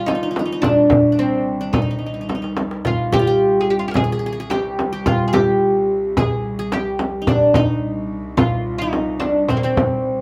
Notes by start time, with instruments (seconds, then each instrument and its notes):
Already playing: cello section C2, qanun F4 G4
0.06 oud D#4, qanun D#4, darbuka tek, frame drum
0.15 qanun D#4
0.23 qanun D#4
0.31 qanun D#4
0.36 qanun D#4, darbuka tek, frame drum
0.46 qanun D#4
0.52 qanun D#4
0.62 oud D4, qanun D4, frame drum, darbuka dum
0.90 frame drum, darbuka dum
1.12 qanun D4
1.19 oud C4, qanun C4
1.33 darbuka ka
1.61 qanun D4, darbuka ka
1.73 oud D#4, qanun D#4, frame drum, darbuka dum
1.82 qanun D#4
1.91 qanun D#4
1.99 qanun D#4
2.03 qanun D#4, darbuka ka
2.14 qanun D#4, darbuka ka
2.21 qanun D#4
2.29 qanun D#4, darbuka tek, frame drum
2.35 qanun D#4
2.42 qanun D#4, darbuka ka
2.57 darbuka tek, frame drum
2.71 darbuka ka
2.85 cello section C2, qanun F4, oud F4, frame drum, darbuka dum
3.00 darbuka ka
3.12 qanun G4, oud G4, frame drum, darbuka dum
3.19 qanun F4
3.27 qanun G4
3.61 oud G#4
3.70 oud G4
3.79 oud F4
3.88 oud G4 A#4
3.94 qanun G#4, oud G#4, frame drum, darbuka dum
4.04 qanun G#4
4.12 qanun G#4
4.19 qanun G#4
4.25 qanun G#4, darbuka ka
4.32 qanun G#4
4.40 qanun G#4
4.50 oud G4, qanun G4, darbuka tek, frame drum
4.79 darbuka tek, frame drum
4.93 qanun G4
5.06 oud F4, qanun F4, frame drum, darbuka dum
5.22 darbuka ka
5.28 oud G#4
5.33 qanun G4, oud G4, frame drum, darbuka dum
6.17 oud G#4, qanun G#4, frame drum, darbuka dum
6.45 darbuka ka
6.59 qanun G#4
6.72 qanun G4, oud G4, darbuka tek, frame drum
6.99 darbuka tek, frame drum
7.22 qanun D#4
7.27 cello section C2, oud D4, qanun D4, frame drum, darbuka dum
7.43 darbuka ka
7.54 oud D#4, qanun D#4, frame drum, darbuka dum
8.37 oud F4, qanun F4, frame drum, darbuka dum
8.66 darbuka ka
8.78 oud D#4, qanun D#4
8.93 darbuka tek, frame drum
9.20 oud D4, darbuka tek, frame drum
9.48 oud C4, qanun C4, frame drum, darbuka dum
9.57 oud A#3
9.63 oud C4, qanun C4, darbuka ka
9.77 frame drum, darbuka dum
10.06 darbuka ka